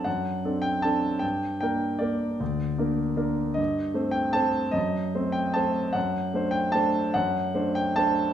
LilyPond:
\new Staff \with { instrumentName = "Grand piano" } { \time 3/4 \key g \minor \tempo 4 = 152 << { fis''4. g''8 a''4 | g''4 g''4 d''4~ | d''2~ d''8 r8 | ees''4. g''8 a''4 |
dis''4. g''8 a''4 | fis''4. g''8 a''4 | fis''4. g''8 a''4 | } \\ { fis,4 <c' d' a'>4 <c' d' a'>4 | g,4 <bes d' bes'>4 <bes d' bes'>4 | d,4 <bes d' bes'>4 <bes d' bes'>4 | g,4 <a c' c''>4 <a c' c''>4 |
fis,4 <a c' c''>4 <a c' c''>4 | fis,4 <a d' c''>4 <a d' c''>4 | fis,4 <a d' c''>4 <a d' c''>4 | } >> }